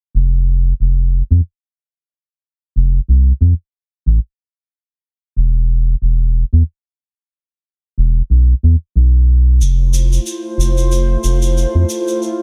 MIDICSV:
0, 0, Header, 1, 4, 480
1, 0, Start_track
1, 0, Tempo, 652174
1, 1310, Time_signature, 4, 2, 24, 8
1, 9143, End_track
2, 0, Start_track
2, 0, Title_t, "Ambient pad"
2, 0, Program_c, 0, 92
2, 7069, Note_on_c, 0, 64, 71
2, 7069, Note_on_c, 0, 65, 71
2, 7069, Note_on_c, 0, 72, 82
2, 7074, Note_on_c, 0, 57, 75
2, 8970, Note_off_c, 0, 72, 0
2, 8982, Note_on_c, 0, 74, 89
2, 9143, Note_off_c, 0, 57, 0
2, 9143, Note_off_c, 0, 64, 0
2, 9143, Note_off_c, 0, 65, 0
2, 9143, Note_off_c, 0, 74, 0
2, 9143, End_track
3, 0, Start_track
3, 0, Title_t, "Analog synth bass"
3, 0, Program_c, 1, 38
3, 107, Note_on_c, 1, 29, 86
3, 537, Note_off_c, 1, 29, 0
3, 588, Note_on_c, 1, 29, 73
3, 898, Note_off_c, 1, 29, 0
3, 961, Note_on_c, 1, 41, 85
3, 1036, Note_off_c, 1, 41, 0
3, 2030, Note_on_c, 1, 29, 83
3, 2205, Note_off_c, 1, 29, 0
3, 2269, Note_on_c, 1, 36, 74
3, 2445, Note_off_c, 1, 36, 0
3, 2507, Note_on_c, 1, 41, 79
3, 2602, Note_off_c, 1, 41, 0
3, 2989, Note_on_c, 1, 33, 83
3, 3083, Note_off_c, 1, 33, 0
3, 3948, Note_on_c, 1, 28, 84
3, 4377, Note_off_c, 1, 28, 0
3, 4428, Note_on_c, 1, 28, 73
3, 4738, Note_off_c, 1, 28, 0
3, 4803, Note_on_c, 1, 40, 77
3, 4877, Note_off_c, 1, 40, 0
3, 5870, Note_on_c, 1, 28, 86
3, 6045, Note_off_c, 1, 28, 0
3, 6108, Note_on_c, 1, 35, 69
3, 6284, Note_off_c, 1, 35, 0
3, 6353, Note_on_c, 1, 40, 77
3, 6445, Note_off_c, 1, 40, 0
3, 6591, Note_on_c, 1, 35, 80
3, 7069, Note_on_c, 1, 29, 85
3, 7081, Note_off_c, 1, 35, 0
3, 7498, Note_off_c, 1, 29, 0
3, 7784, Note_on_c, 1, 29, 90
3, 8215, Note_off_c, 1, 29, 0
3, 8270, Note_on_c, 1, 29, 76
3, 8578, Note_off_c, 1, 29, 0
3, 8645, Note_on_c, 1, 41, 84
3, 8718, Note_off_c, 1, 41, 0
3, 9143, End_track
4, 0, Start_track
4, 0, Title_t, "Drums"
4, 7076, Note_on_c, 9, 82, 34
4, 7150, Note_off_c, 9, 82, 0
4, 7315, Note_on_c, 9, 82, 74
4, 7388, Note_off_c, 9, 82, 0
4, 7452, Note_on_c, 9, 82, 46
4, 7525, Note_off_c, 9, 82, 0
4, 7554, Note_on_c, 9, 82, 45
4, 7628, Note_off_c, 9, 82, 0
4, 7806, Note_on_c, 9, 82, 73
4, 7880, Note_off_c, 9, 82, 0
4, 7929, Note_on_c, 9, 82, 48
4, 8003, Note_off_c, 9, 82, 0
4, 8034, Note_on_c, 9, 82, 46
4, 8108, Note_off_c, 9, 82, 0
4, 8272, Note_on_c, 9, 82, 73
4, 8345, Note_off_c, 9, 82, 0
4, 8406, Note_on_c, 9, 82, 47
4, 8480, Note_off_c, 9, 82, 0
4, 8518, Note_on_c, 9, 82, 43
4, 8591, Note_off_c, 9, 82, 0
4, 8754, Note_on_c, 9, 82, 73
4, 8828, Note_off_c, 9, 82, 0
4, 8889, Note_on_c, 9, 82, 48
4, 8962, Note_off_c, 9, 82, 0
4, 8997, Note_on_c, 9, 82, 34
4, 9070, Note_off_c, 9, 82, 0
4, 9143, End_track
0, 0, End_of_file